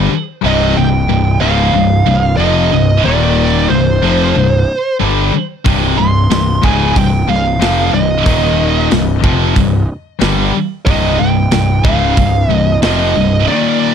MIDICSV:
0, 0, Header, 1, 8, 480
1, 0, Start_track
1, 0, Key_signature, -3, "minor"
1, 0, Tempo, 652884
1, 315, Time_signature, 4, 2, 24, 8
1, 10252, End_track
2, 0, Start_track
2, 0, Title_t, "Lead electric guitar"
2, 0, Program_c, 0, 29
2, 341, Note_on_c, 0, 75, 99
2, 567, Note_on_c, 0, 79, 110
2, 575, Note_off_c, 0, 75, 0
2, 1035, Note_off_c, 0, 79, 0
2, 1038, Note_on_c, 0, 77, 106
2, 1727, Note_off_c, 0, 77, 0
2, 1742, Note_on_c, 0, 75, 91
2, 2243, Note_off_c, 0, 75, 0
2, 2246, Note_on_c, 0, 74, 96
2, 2715, Note_off_c, 0, 74, 0
2, 2718, Note_on_c, 0, 72, 74
2, 3646, Note_off_c, 0, 72, 0
2, 4398, Note_on_c, 0, 84, 99
2, 4885, Note_on_c, 0, 80, 86
2, 4889, Note_off_c, 0, 84, 0
2, 5125, Note_off_c, 0, 80, 0
2, 5131, Note_on_c, 0, 79, 102
2, 5345, Note_off_c, 0, 79, 0
2, 5366, Note_on_c, 0, 77, 90
2, 5808, Note_off_c, 0, 77, 0
2, 5837, Note_on_c, 0, 75, 82
2, 6523, Note_off_c, 0, 75, 0
2, 7984, Note_on_c, 0, 75, 99
2, 8209, Note_off_c, 0, 75, 0
2, 8226, Note_on_c, 0, 79, 110
2, 8707, Note_on_c, 0, 77, 102
2, 8721, Note_off_c, 0, 79, 0
2, 9193, Note_off_c, 0, 77, 0
2, 9193, Note_on_c, 0, 75, 102
2, 9399, Note_off_c, 0, 75, 0
2, 9441, Note_on_c, 0, 75, 91
2, 9909, Note_off_c, 0, 75, 0
2, 9912, Note_on_c, 0, 74, 87
2, 10252, Note_off_c, 0, 74, 0
2, 10252, End_track
3, 0, Start_track
3, 0, Title_t, "Distorted electric guitar"
3, 0, Program_c, 1, 30
3, 0, Note_on_c, 1, 50, 103
3, 0, Note_on_c, 1, 55, 102
3, 74, Note_off_c, 1, 55, 0
3, 75, Note_off_c, 1, 50, 0
3, 10252, End_track
4, 0, Start_track
4, 0, Title_t, "Distorted electric guitar"
4, 0, Program_c, 2, 30
4, 305, Note_on_c, 2, 36, 83
4, 313, Note_on_c, 2, 43, 93
4, 318, Note_on_c, 2, 48, 101
4, 543, Note_off_c, 2, 36, 0
4, 547, Note_off_c, 2, 43, 0
4, 550, Note_off_c, 2, 48, 0
4, 559, Note_on_c, 2, 36, 66
4, 564, Note_on_c, 2, 43, 68
4, 749, Note_off_c, 2, 36, 0
4, 752, Note_off_c, 2, 43, 0
4, 798, Note_on_c, 2, 36, 66
4, 802, Note_on_c, 2, 43, 64
4, 989, Note_off_c, 2, 36, 0
4, 991, Note_off_c, 2, 43, 0
4, 1037, Note_on_c, 2, 37, 92
4, 1047, Note_on_c, 2, 44, 95
4, 1047, Note_on_c, 2, 49, 116
4, 1269, Note_off_c, 2, 37, 0
4, 1274, Note_off_c, 2, 44, 0
4, 1274, Note_off_c, 2, 49, 0
4, 1278, Note_on_c, 2, 36, 68
4, 1278, Note_on_c, 2, 43, 71
4, 1469, Note_off_c, 2, 36, 0
4, 1469, Note_off_c, 2, 43, 0
4, 1515, Note_on_c, 2, 36, 63
4, 1520, Note_on_c, 2, 43, 71
4, 1707, Note_off_c, 2, 36, 0
4, 1710, Note_off_c, 2, 43, 0
4, 1746, Note_on_c, 2, 41, 100
4, 1750, Note_on_c, 2, 48, 109
4, 1756, Note_on_c, 2, 53, 115
4, 1984, Note_off_c, 2, 41, 0
4, 1986, Note_off_c, 2, 48, 0
4, 1988, Note_off_c, 2, 53, 0
4, 1993, Note_on_c, 2, 36, 64
4, 1995, Note_on_c, 2, 43, 70
4, 2186, Note_off_c, 2, 36, 0
4, 2187, Note_off_c, 2, 43, 0
4, 2231, Note_on_c, 2, 39, 76
4, 2236, Note_on_c, 2, 46, 86
4, 2241, Note_on_c, 2, 51, 89
4, 2706, Note_off_c, 2, 39, 0
4, 2708, Note_off_c, 2, 46, 0
4, 2711, Note_off_c, 2, 51, 0
4, 2722, Note_on_c, 2, 36, 64
4, 2722, Note_on_c, 2, 43, 73
4, 2910, Note_off_c, 2, 43, 0
4, 2911, Note_off_c, 2, 36, 0
4, 2959, Note_on_c, 2, 41, 94
4, 2965, Note_on_c, 2, 48, 106
4, 2968, Note_on_c, 2, 53, 108
4, 3189, Note_off_c, 2, 41, 0
4, 3193, Note_off_c, 2, 48, 0
4, 3194, Note_off_c, 2, 53, 0
4, 3194, Note_on_c, 2, 36, 65
4, 3199, Note_on_c, 2, 43, 62
4, 3386, Note_off_c, 2, 36, 0
4, 3389, Note_off_c, 2, 43, 0
4, 3675, Note_on_c, 2, 43, 101
4, 3678, Note_on_c, 2, 50, 102
4, 3684, Note_on_c, 2, 55, 120
4, 3907, Note_off_c, 2, 43, 0
4, 3909, Note_off_c, 2, 50, 0
4, 3912, Note_off_c, 2, 55, 0
4, 4152, Note_on_c, 2, 36, 79
4, 4164, Note_on_c, 2, 43, 94
4, 4165, Note_on_c, 2, 48, 94
4, 4385, Note_off_c, 2, 36, 0
4, 4391, Note_off_c, 2, 43, 0
4, 4392, Note_off_c, 2, 48, 0
4, 4402, Note_on_c, 2, 36, 63
4, 4403, Note_on_c, 2, 43, 78
4, 4589, Note_off_c, 2, 36, 0
4, 4590, Note_off_c, 2, 43, 0
4, 4637, Note_on_c, 2, 36, 56
4, 4638, Note_on_c, 2, 43, 64
4, 4827, Note_off_c, 2, 36, 0
4, 4827, Note_off_c, 2, 43, 0
4, 4866, Note_on_c, 2, 37, 87
4, 4870, Note_on_c, 2, 44, 96
4, 4881, Note_on_c, 2, 49, 99
4, 5102, Note_off_c, 2, 37, 0
4, 5103, Note_off_c, 2, 44, 0
4, 5109, Note_off_c, 2, 49, 0
4, 5114, Note_on_c, 2, 43, 68
4, 5115, Note_on_c, 2, 36, 59
4, 5305, Note_off_c, 2, 36, 0
4, 5305, Note_off_c, 2, 43, 0
4, 5348, Note_on_c, 2, 36, 61
4, 5350, Note_on_c, 2, 43, 71
4, 5541, Note_off_c, 2, 36, 0
4, 5542, Note_off_c, 2, 43, 0
4, 5584, Note_on_c, 2, 41, 100
4, 5590, Note_on_c, 2, 48, 105
4, 5594, Note_on_c, 2, 53, 111
4, 5818, Note_off_c, 2, 41, 0
4, 5821, Note_on_c, 2, 36, 69
4, 5823, Note_off_c, 2, 48, 0
4, 5825, Note_off_c, 2, 53, 0
4, 5828, Note_on_c, 2, 43, 77
4, 6017, Note_off_c, 2, 36, 0
4, 6021, Note_off_c, 2, 43, 0
4, 6055, Note_on_c, 2, 39, 78
4, 6065, Note_on_c, 2, 46, 82
4, 6067, Note_on_c, 2, 51, 98
4, 6532, Note_off_c, 2, 39, 0
4, 6535, Note_on_c, 2, 36, 62
4, 6536, Note_off_c, 2, 46, 0
4, 6539, Note_on_c, 2, 43, 71
4, 6540, Note_off_c, 2, 51, 0
4, 6734, Note_off_c, 2, 36, 0
4, 6736, Note_off_c, 2, 43, 0
4, 6779, Note_on_c, 2, 41, 93
4, 6786, Note_on_c, 2, 48, 103
4, 6790, Note_on_c, 2, 53, 107
4, 7014, Note_off_c, 2, 41, 0
4, 7017, Note_on_c, 2, 36, 67
4, 7018, Note_off_c, 2, 48, 0
4, 7021, Note_on_c, 2, 43, 76
4, 7022, Note_off_c, 2, 53, 0
4, 7214, Note_off_c, 2, 36, 0
4, 7216, Note_off_c, 2, 43, 0
4, 7493, Note_on_c, 2, 43, 91
4, 7502, Note_on_c, 2, 50, 98
4, 7507, Note_on_c, 2, 55, 118
4, 7733, Note_off_c, 2, 43, 0
4, 7737, Note_off_c, 2, 50, 0
4, 7740, Note_off_c, 2, 55, 0
4, 7984, Note_on_c, 2, 36, 85
4, 7992, Note_on_c, 2, 43, 90
4, 7996, Note_on_c, 2, 48, 95
4, 8215, Note_off_c, 2, 36, 0
4, 8219, Note_off_c, 2, 43, 0
4, 8224, Note_off_c, 2, 48, 0
4, 8224, Note_on_c, 2, 36, 70
4, 8227, Note_on_c, 2, 43, 72
4, 8418, Note_off_c, 2, 36, 0
4, 8419, Note_off_c, 2, 43, 0
4, 8465, Note_on_c, 2, 36, 62
4, 8468, Note_on_c, 2, 43, 70
4, 8658, Note_off_c, 2, 36, 0
4, 8659, Note_off_c, 2, 43, 0
4, 8703, Note_on_c, 2, 37, 98
4, 8707, Note_on_c, 2, 44, 105
4, 8710, Note_on_c, 2, 49, 120
4, 8938, Note_off_c, 2, 37, 0
4, 8940, Note_off_c, 2, 44, 0
4, 8942, Note_off_c, 2, 49, 0
4, 8943, Note_on_c, 2, 36, 58
4, 8948, Note_on_c, 2, 43, 67
4, 9138, Note_off_c, 2, 36, 0
4, 9140, Note_off_c, 2, 43, 0
4, 9183, Note_on_c, 2, 36, 67
4, 9186, Note_on_c, 2, 43, 62
4, 9378, Note_off_c, 2, 36, 0
4, 9380, Note_off_c, 2, 43, 0
4, 9427, Note_on_c, 2, 41, 101
4, 9429, Note_on_c, 2, 48, 98
4, 9433, Note_on_c, 2, 53, 103
4, 9661, Note_off_c, 2, 41, 0
4, 9662, Note_off_c, 2, 48, 0
4, 9664, Note_off_c, 2, 53, 0
4, 9670, Note_on_c, 2, 36, 61
4, 9675, Note_on_c, 2, 43, 74
4, 9862, Note_off_c, 2, 36, 0
4, 9865, Note_off_c, 2, 43, 0
4, 9906, Note_on_c, 2, 39, 84
4, 9912, Note_on_c, 2, 46, 92
4, 9912, Note_on_c, 2, 51, 94
4, 10252, Note_off_c, 2, 39, 0
4, 10252, Note_off_c, 2, 46, 0
4, 10252, Note_off_c, 2, 51, 0
4, 10252, End_track
5, 0, Start_track
5, 0, Title_t, "Picked electric bass"
5, 0, Program_c, 3, 34
5, 323, Note_on_c, 3, 24, 86
5, 543, Note_off_c, 3, 24, 0
5, 564, Note_on_c, 3, 24, 78
5, 784, Note_off_c, 3, 24, 0
5, 800, Note_on_c, 3, 24, 78
5, 1021, Note_off_c, 3, 24, 0
5, 1039, Note_on_c, 3, 25, 91
5, 1260, Note_off_c, 3, 25, 0
5, 1275, Note_on_c, 3, 24, 79
5, 1499, Note_off_c, 3, 24, 0
5, 1514, Note_on_c, 3, 24, 81
5, 1738, Note_off_c, 3, 24, 0
5, 1751, Note_on_c, 3, 29, 102
5, 1976, Note_off_c, 3, 29, 0
5, 1999, Note_on_c, 3, 24, 74
5, 2221, Note_off_c, 3, 24, 0
5, 2248, Note_on_c, 3, 27, 92
5, 2692, Note_off_c, 3, 27, 0
5, 2722, Note_on_c, 3, 24, 80
5, 2942, Note_off_c, 3, 24, 0
5, 2962, Note_on_c, 3, 29, 93
5, 3182, Note_off_c, 3, 29, 0
5, 3206, Note_on_c, 3, 24, 75
5, 3424, Note_off_c, 3, 24, 0
5, 3686, Note_on_c, 3, 31, 98
5, 3904, Note_off_c, 3, 31, 0
5, 4164, Note_on_c, 3, 24, 82
5, 4382, Note_off_c, 3, 24, 0
5, 4394, Note_on_c, 3, 24, 77
5, 4616, Note_off_c, 3, 24, 0
5, 4628, Note_on_c, 3, 24, 72
5, 4853, Note_off_c, 3, 24, 0
5, 4877, Note_on_c, 3, 25, 98
5, 5098, Note_off_c, 3, 25, 0
5, 5120, Note_on_c, 3, 24, 77
5, 5339, Note_off_c, 3, 24, 0
5, 5351, Note_on_c, 3, 24, 80
5, 5574, Note_off_c, 3, 24, 0
5, 5591, Note_on_c, 3, 29, 98
5, 5814, Note_off_c, 3, 29, 0
5, 5822, Note_on_c, 3, 24, 73
5, 6049, Note_off_c, 3, 24, 0
5, 6076, Note_on_c, 3, 27, 89
5, 6523, Note_off_c, 3, 27, 0
5, 6556, Note_on_c, 3, 24, 78
5, 6775, Note_off_c, 3, 24, 0
5, 6792, Note_on_c, 3, 29, 91
5, 7013, Note_off_c, 3, 29, 0
5, 7035, Note_on_c, 3, 24, 78
5, 7255, Note_off_c, 3, 24, 0
5, 7510, Note_on_c, 3, 31, 93
5, 7732, Note_off_c, 3, 31, 0
5, 7993, Note_on_c, 3, 24, 92
5, 8213, Note_off_c, 3, 24, 0
5, 8232, Note_on_c, 3, 24, 77
5, 8453, Note_off_c, 3, 24, 0
5, 8478, Note_on_c, 3, 24, 80
5, 8696, Note_off_c, 3, 24, 0
5, 8714, Note_on_c, 3, 25, 98
5, 8935, Note_off_c, 3, 25, 0
5, 8956, Note_on_c, 3, 24, 73
5, 9175, Note_off_c, 3, 24, 0
5, 9187, Note_on_c, 3, 24, 78
5, 9411, Note_off_c, 3, 24, 0
5, 9444, Note_on_c, 3, 29, 99
5, 9660, Note_off_c, 3, 29, 0
5, 9679, Note_on_c, 3, 24, 71
5, 9898, Note_off_c, 3, 24, 0
5, 10252, End_track
6, 0, Start_track
6, 0, Title_t, "Muted distorted electric guitar strokes"
6, 74, Note_on_c, 9, 29, 61
6, 148, Note_off_c, 9, 29, 0
6, 3921, Note_on_c, 9, 29, 56
6, 3995, Note_off_c, 9, 29, 0
6, 7736, Note_on_c, 9, 29, 63
6, 7810, Note_off_c, 9, 29, 0
6, 10252, End_track
7, 0, Start_track
7, 0, Title_t, "Muted picked electric bass strokes"
7, 83, Note_on_c, 9, 29, 40
7, 157, Note_off_c, 9, 29, 0
7, 3923, Note_on_c, 9, 29, 38
7, 3996, Note_off_c, 9, 29, 0
7, 7751, Note_on_c, 9, 29, 40
7, 7824, Note_off_c, 9, 29, 0
7, 10252, End_track
8, 0, Start_track
8, 0, Title_t, "Drums"
8, 4160, Note_on_c, 9, 36, 111
8, 4163, Note_on_c, 9, 46, 54
8, 4234, Note_off_c, 9, 36, 0
8, 4236, Note_off_c, 9, 46, 0
8, 4640, Note_on_c, 9, 46, 56
8, 4644, Note_on_c, 9, 38, 113
8, 4713, Note_off_c, 9, 46, 0
8, 4718, Note_off_c, 9, 38, 0
8, 4878, Note_on_c, 9, 36, 100
8, 4952, Note_off_c, 9, 36, 0
8, 5119, Note_on_c, 9, 36, 84
8, 5125, Note_on_c, 9, 46, 61
8, 5192, Note_off_c, 9, 36, 0
8, 5199, Note_off_c, 9, 46, 0
8, 5599, Note_on_c, 9, 46, 62
8, 5604, Note_on_c, 9, 38, 113
8, 5673, Note_off_c, 9, 46, 0
8, 5677, Note_off_c, 9, 38, 0
8, 6074, Note_on_c, 9, 36, 104
8, 6077, Note_on_c, 9, 46, 64
8, 6147, Note_off_c, 9, 36, 0
8, 6151, Note_off_c, 9, 46, 0
8, 6553, Note_on_c, 9, 46, 61
8, 6558, Note_on_c, 9, 38, 103
8, 6627, Note_off_c, 9, 46, 0
8, 6631, Note_off_c, 9, 38, 0
8, 6791, Note_on_c, 9, 36, 114
8, 6865, Note_off_c, 9, 36, 0
8, 7030, Note_on_c, 9, 36, 83
8, 7032, Note_on_c, 9, 46, 59
8, 7104, Note_off_c, 9, 36, 0
8, 7106, Note_off_c, 9, 46, 0
8, 7507, Note_on_c, 9, 46, 54
8, 7511, Note_on_c, 9, 38, 119
8, 7580, Note_off_c, 9, 46, 0
8, 7585, Note_off_c, 9, 38, 0
8, 7989, Note_on_c, 9, 36, 117
8, 7989, Note_on_c, 9, 46, 58
8, 8063, Note_off_c, 9, 36, 0
8, 8063, Note_off_c, 9, 46, 0
8, 8465, Note_on_c, 9, 46, 57
8, 8469, Note_on_c, 9, 38, 104
8, 8538, Note_off_c, 9, 46, 0
8, 8543, Note_off_c, 9, 38, 0
8, 8710, Note_on_c, 9, 36, 108
8, 8784, Note_off_c, 9, 36, 0
8, 8947, Note_on_c, 9, 46, 58
8, 8950, Note_on_c, 9, 36, 83
8, 9021, Note_off_c, 9, 46, 0
8, 9023, Note_off_c, 9, 36, 0
8, 9428, Note_on_c, 9, 46, 58
8, 9433, Note_on_c, 9, 38, 116
8, 9502, Note_off_c, 9, 46, 0
8, 9506, Note_off_c, 9, 38, 0
8, 10252, End_track
0, 0, End_of_file